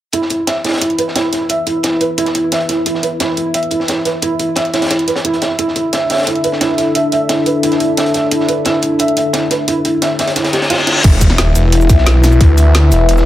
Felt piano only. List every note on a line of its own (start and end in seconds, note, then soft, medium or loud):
0.13 0.20 E4 medium
0.30 0.37 E4 medium
0.47 0.54 E5 medium
0.64 0.71 E4 medium
0.81 0.91 E4 medium
0.99 1.02 B4 medium
1.16 1.22 E4 loud
1.33 1.39 E4 medium
1.50 1.56 E5 medium
1.67 1.73 E4 medium
1.84 1.93 E4 medium
2.01 2.05 B4 medium
2.18 2.24 E4 medium
2.35 2.41 E4 medium
2.52 2.58 E5 medium
2.69 2.75 E4 medium
2.86 2.96 E4 medium
3.03 3.07 B4 medium
3.20 3.27 E4 loud
3.37 3.44 E4 medium
3.54 3.61 E5 medium
3.71 3.78 E4 medium
3.88 3.98 E4 medium
4.05 4.09 B4 medium
4.22 4.29 E4 loud
4.39 4.46 E4 medium
4.57 4.63 E5 medium
4.74 4.80 E4 medium
4.91 5.00 E4 medium
5.08 5.11 B4 medium
5.25 5.31 E4 loud
5.42 5.48 E4 medium
5.59 5.65 E4 loud
5.76 5.82 E4 medium
5.93 5.99 E5 medium
6.10 6.16 E5 medium
6.27 6.37 E4 medium
6.44 6.48 B4 medium
6.61 6.67 E4 loud
6.78 6.84 E4 medium
6.95 7.02 E5 medium
7.12 7.19 E5 medium
7.29 7.39 E4 medium
7.46 7.50 B4 medium
7.63 7.70 E4 loud
7.80 7.87 E4 medium
7.97 8.04 E5 medium
8.14 8.21 E5 medium
8.32 8.41 E4 medium
8.49 8.52 B4 medium
8.66 8.72 E4 loud
8.83 8.89 E4 medium
9.00 9.06 E5 medium
9.17 9.23 E5 medium
9.34 9.43 E4 medium
9.51 9.55 B4 medium
9.68 9.74 E4 loud
9.85 9.91 E4 medium
10.02 10.08 E5 medium
10.19 10.25 E5 medium
10.36 10.46 E4 medium
10.53 10.57 G4 medium
10.70 10.74 F4 loud
10.87 10.94 F4 medium